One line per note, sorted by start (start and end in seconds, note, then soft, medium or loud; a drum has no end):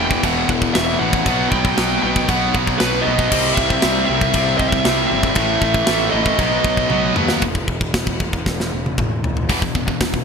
0.00 0.17 E1 loud
0.00 0.23 E2 medium
0.00 1.25 E2 medium
0.00 0.23 B2 medium
0.00 1.24 B2 loud
0.00 0.24 E3 medium
0.00 1.26 E3 medium
0.00 0.23 G5 medium
0.11 kick medium
0.23 0.43 E1 medium
0.23 0.74 E2 loud
0.23 0.74 B2 loud
0.23 0.75 E3 loud
0.23 0.48 F#5 medium
0.23 kick medium
0.23 china medium
0.49 0.69 E1 loud
0.49 kick medium
0.62 kick medium
0.74 0.95 E1 medium
0.74 0.99 E2 medium
0.74 1.00 B2 medium
0.74 1.01 E3 medium
0.74 1.01 E5 medium
0.74 snare loud
0.74 china medium
0.99 1.21 A1 medium
0.99 1.25 E2 medium
0.99 1.24 B2 medium
0.99 1.25 E3 loud
0.99 1.50 F#5 loud
1.13 kick medium
1.25 1.46 B1 loud
1.25 1.75 B2 loud
1.25 1.76 F#3 loud
1.25 1.76 B3 loud
1.25 kick loud
1.25 china medium
1.51 1.71 B1 medium
1.51 2.02 G5 loud
1.51 kick medium
1.65 kick medium
1.76 1.97 B1 loud
1.76 2.02 B2 medium
1.76 2.03 F#3 medium
1.76 2.02 B3 loud
1.76 snare loud
1.76 china medium
2.03 2.23 B1 loud
2.03 2.27 B2 medium
2.03 2.27 F#3 medium
2.03 2.28 B3 loud
2.03 2.29 G5 loud
2.16 kick medium
2.28 2.49 B1 loud
2.28 2.79 B2 loud
2.28 2.80 F#3 loud
2.28 2.81 B3 loud
2.28 2.53 F#5 medium
2.28 kick loud
2.28 china medium
2.55 2.74 B1 medium
2.55 kick medium
2.67 kick medium
2.79 3.00 B1 medium
2.79 3.04 B2 medium
2.79 3.04 F#3 medium
2.79 3.04 B3 medium
2.79 3.06 B4 medium
2.79 snare loud
2.79 china medium
3.02 3.30 B2 medium
3.02 3.30 F#3 medium
3.02 3.30 B3 loud
3.02 3.52 D#5 loud
3.07 3.26 B1 medium
3.19 kick medium
3.31 3.51 C2 loud
3.31 3.82 C3 loud
3.31 3.83 G3 loud
3.31 3.83 C4 loud
3.31 kick loud
3.31 china medium
3.31 crash loud
3.54 3.77 C2 medium
3.54 4.04 E5 loud
3.54 kick medium
3.70 kick medium
3.82 4.03 C2 loud
3.82 4.08 C3 medium
3.82 4.08 G3 loud
3.82 4.09 C4 medium
3.82 snare loud
3.82 china medium
4.06 4.29 C2 loud
4.06 4.33 C3 medium
4.06 4.34 G3 medium
4.06 4.57 E5 loud
4.10 4.34 C4 medium
4.21 kick medium
4.34 4.54 C2 medium
4.34 4.84 C3 loud
4.34 4.85 G3 loud
4.34 4.86 C4 loud
4.34 kick loud
4.34 china medium
4.58 4.79 C2 medium
4.58 4.68 D#5 loud
4.58 kick medium
4.68 5.06 E5 loud
4.68 kick medium
4.85 5.05 C2 loud
4.85 5.08 C3 medium
4.85 5.09 G3 medium
4.85 5.09 C4 loud
4.85 snare loud
4.85 china medium
5.07 5.31 G#1 medium
5.07 5.34 C3 medium
5.07 5.35 G3 medium
5.07 5.35 C4 loud
5.07 6.08 E5 loud
5.23 kick medium
5.35 5.56 A1 loud
5.35 5.85 A2 medium
5.35 5.86 E3 loud
5.35 5.86 A3 loud
5.35 kick loud
5.35 china medium
5.40 6.40 A3 loud
5.62 5.82 A1 medium
5.62 kick medium
5.74 kick medium
5.86 6.08 A1 medium
5.86 6.11 A2 medium
5.86 6.11 E3 medium
5.86 6.12 A3 loud
5.86 snare loud
5.86 china medium
6.11 6.34 A1 loud
6.11 6.37 A2 medium
6.11 6.38 E3 medium
6.11 6.38 A3 medium
6.11 7.12 D#5 medium
6.26 kick medium
6.38 6.59 B1 medium
6.38 6.88 B2 loud
6.38 6.90 F#3 loud
6.38 6.89 B3 loud
6.38 kick medium
6.38 china medium
6.64 6.85 B1 medium
6.64 kick medium
6.77 kick medium
6.90 7.11 B1 medium
6.90 7.15 B2 medium
6.90 7.15 F#3 medium
6.90 7.16 B3 medium
6.90 high tom medium
7.16 7.36 D#2 medium
7.16 7.41 B2 medium
7.16 7.41 F#3 medium
7.16 7.41 B3 loud
7.16 mid tom medium
7.29 snare loud
7.42 7.67 E1 loud
7.42 kick medium
7.42 crash medium
7.55 kick medium
7.68 7.93 E1 medium
7.68 kick medium
7.81 kick medium
7.94 8.19 E1 medium
7.94 kick medium
7.94 snare loud
7.94 crash medium
8.07 kick medium
8.20 8.45 E1 medium
8.20 kick medium
8.33 kick medium
8.46 8.71 E1 medium
8.46 kick medium
8.46 snare medium
8.60 snare medium
8.73 8.97 E1 medium
8.86 high tom medium
8.98 9.22 E1 medium
8.98 kick medium
8.98 mid tom medium
9.24 9.48 E1 medium
9.24 floor tom medium
9.37 floor tom medium
9.49 9.66 E1 medium
9.49 9.61 E2 medium
9.49 9.61 B2 medium
9.49 9.61 E3 medium
9.49 kick medium
9.49 open hi-hat medium
9.62 9.74 E2 medium
9.62 9.74 B2 medium
9.62 kick medium
9.75 9.91 E1 medium
9.75 9.86 E2 medium
9.75 9.85 B2 medium
9.75 kick medium
9.86 9.99 E2 medium
9.86 9.99 B2 medium
9.86 kick medium
10.00 10.17 E1 medium
10.00 10.24 E2 medium
10.00 10.24 B2 medium
10.00 kick medium
10.00 snare loud
10.00 open hi-hat medium
10.14 kick medium